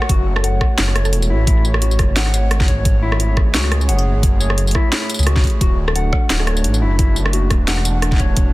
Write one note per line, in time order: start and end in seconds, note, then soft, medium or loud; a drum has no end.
0.02 cross-stick medium
0.09 0.60 F#1 loud
0.09 8.53 A3 medium
0.09 2.82 F#4 medium
0.09 0.26 F#4 medium
0.09 5.57 C#5 medium
0.09 kick loud
0.09 closed hi-hat medium
0.36 0.41 A4 medium
0.36 cross-stick medium
0.44 0.50 A4 medium
0.44 0.94 F#5 medium
0.44 closed hi-hat medium
0.61 kick medium
0.61 cross-stick medium
0.78 1.14 F#1 loud
0.78 snare loud
0.78 closed hi-hat medium
0.88 cross-stick soft
0.96 1.29 C#5 medium
0.96 cross-stick medium
0.96 closed hi-hat soft
1.05 1.40 A4 loud
1.05 tambourine soft
1.13 1.31 E1 loud
1.13 closed hi-hat medium
1.22 tambourine soft
1.30 1.98 A1 medium
1.30 1.46 E4 loud
1.47 1.64 E4 medium
1.47 kick loud
1.47 closed hi-hat medium
1.65 tambourine soft
1.74 cross-stick medium
1.82 1.98 F#4 medium
1.82 closed hi-hat medium
1.91 tambourine soft
1.99 2.15 F#1 medium
1.99 kick medium
1.99 cross-stick medium
1.99 closed hi-hat soft
2.16 3.56 G#1 loud
2.16 2.67 F#5 medium
2.16 snare loud
2.16 closed hi-hat medium
2.26 cross-stick soft
2.34 closed hi-hat soft
2.34 tambourine medium
2.51 cross-stick medium
2.51 closed hi-hat medium
2.60 kick loud
2.60 snare soft
2.68 3.01 C#5 medium
2.68 kick medium
2.68 closed hi-hat soft
2.85 5.58 G#4 medium
2.85 kick loud
2.85 closed hi-hat medium
3.03 3.18 E4 loud
3.12 cross-stick medium
3.20 3.36 E4 medium
3.20 closed hi-hat medium
3.37 kick medium
3.37 cross-stick medium
3.54 3.90 C#2 medium
3.54 3.71 F#4 medium
3.54 snare loud
3.54 closed hi-hat medium
3.64 cross-stick soft
3.72 cross-stick medium
3.72 closed hi-hat soft
3.81 tambourine soft
3.89 4.14 F#1 medium
3.89 4.39 F#5 medium
3.89 closed hi-hat medium
3.99 tambourine soft
4.16 4.23 G#1 medium
4.23 4.74 F#1 loud
4.23 kick loud
4.23 closed hi-hat medium
4.40 4.73 C#5 medium
4.40 tambourine soft
4.50 cross-stick medium
4.58 closed hi-hat medium
4.67 closed hi-hat soft
4.67 tambourine soft
4.75 4.91 E4 loud
4.75 kick medium
4.75 cross-stick medium
4.92 snare loud
4.92 closed hi-hat medium
5.02 cross-stick soft
5.10 closed hi-hat soft
5.10 tambourine medium
5.14 tambourine medium
5.19 5.43 C#2 medium
5.19 tambourine soft
5.23 5.43 F#4 medium
5.23 cross-stick medium
5.23 closed hi-hat medium
5.23 tambourine soft
5.36 kick loud
5.36 snare soft
5.44 kick medium
5.44 closed hi-hat soft
5.47 closed hi-hat soft
5.50 closed hi-hat soft
5.61 6.12 D1 loud
5.61 8.53 D4 medium
5.61 5.78 F#4 medium
5.61 8.53 F#4 medium
5.61 kick loud
5.61 closed hi-hat medium
5.88 5.93 A4 medium
5.88 cross-stick medium
5.95 6.02 A4 medium
5.95 6.46 F#5 medium
5.95 closed hi-hat medium
6.13 kick medium
6.13 cross-stick medium
6.30 6.66 D1 medium
6.30 snare loud
6.30 closed hi-hat medium
6.40 6.64 A4 medium
6.40 cross-stick soft
6.47 6.80 C#5 medium
6.47 cross-stick medium
6.47 closed hi-hat soft
6.57 tambourine soft
6.64 6.83 A1 loud
6.64 closed hi-hat medium
6.74 tambourine soft
6.82 7.50 F#1 medium
6.82 6.98 E4 loud
6.99 7.16 E4 medium
6.99 kick loud
6.99 closed hi-hat medium
7.16 tambourine soft
7.26 cross-stick medium
7.33 7.50 F#4 medium
7.33 closed hi-hat medium
7.50 7.67 D1 medium
7.50 kick medium
7.50 cross-stick medium
7.50 closed hi-hat soft
7.68 8.53 E1 loud
7.68 8.18 F#5 medium
7.68 snare loud
7.68 closed hi-hat medium
7.78 cross-stick soft
7.85 closed hi-hat soft
7.85 tambourine medium
8.02 cross-stick medium
8.02 closed hi-hat medium
8.12 kick loud
8.12 snare soft
8.14 snare soft
8.17 8.53 C#5 medium
8.17 kick medium
8.17 snare soft
8.17 closed hi-hat soft
8.37 kick loud
8.37 closed hi-hat medium